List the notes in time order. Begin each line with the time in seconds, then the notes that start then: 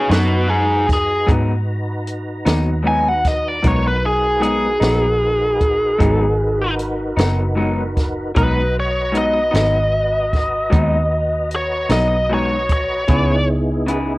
Already playing: D#4 F#4 G#4 B4 A#5
0.09 F#2 F#3 B3 D#4 F#4 B4, snare, closed hi-hat
0.49 D#4 G#4
0.89 kick, snare, closed hi-hat
0.93 G#4
1.27 G#2 F#3 B3 D#4, kick, closed hi-hat
2.07 closed hi-hat
2.45 D#2 F#3 B3 D#4, snare, closed hi-hat
2.83 G#2 F#3 B3 D#4
2.87 G#5
3.08 F#5
3.25 D#5, kick, snare, closed hi-hat
3.48 D5
3.62 B1 G#2 F#3 B3 D#4 F#4 A#4 B4, kick, closed hi-hat
3.67 C#5
3.87 B4
4.06 G#4
4.40 G#2 F#3 B3 D#4 G#4, closed hi-hat
4.80 A#1 F#3 B3 D#4, snare, closed hi-hat
5.61 kick, closed hi-hat
5.98 G#1 G#2 F#3 B3 D#4, kick, closed hi-hat
6.79 closed hi-hat
7.17 F#1 F#3 B3 D#4, snare, closed hi-hat
7.55 G#2 F#3 B3 D#4
7.97 kick, snare, closed hi-hat
8.35 B1 G#2 F#3 B3 D#4 F#4 B4 D#5 A#5, kick, closed hi-hat
8.80 C#5
9.12 G#2 F#3 B3 D#4, closed hi-hat
9.18 D#5
9.51 G#1 F#3 B3 D#4, closed hi-hat
9.56 snare
10.33 kick, snare, closed hi-hat
10.70 D#2 G#2 F#3 B3 D#4, kick, closed hi-hat
11.51 closed hi-hat
11.56 C#5
11.89 B1 F#3 B3 D#4 D#5, snare, closed hi-hat
12.30 G#2 F#3 B3 D#4
12.34 C#5
12.69 C#5, kick, closed hi-hat
13.07 C#2 C#3 B3 D#4 E4 G#4, kick, closed hi-hat
13.87 C#3 B3 E4 G#4, closed hi-hat